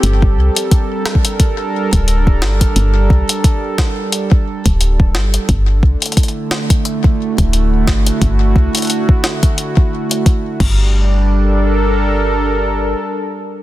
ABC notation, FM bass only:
X:1
M:4/4
L:1/16
Q:"Swing 16ths" 1/4=88
K:Gdor
V:1 name="FM bass" clef=bass
G,,,2 C,, z8 D,,,3 G,,, z | G,,,2 C,, z8 D,,,3 G,,, z | G,,,2 C,, z8 D,,,3 G,,, z | G,,,2 C,, z8 z3 G,,,2- |
G,,,12 z4 |]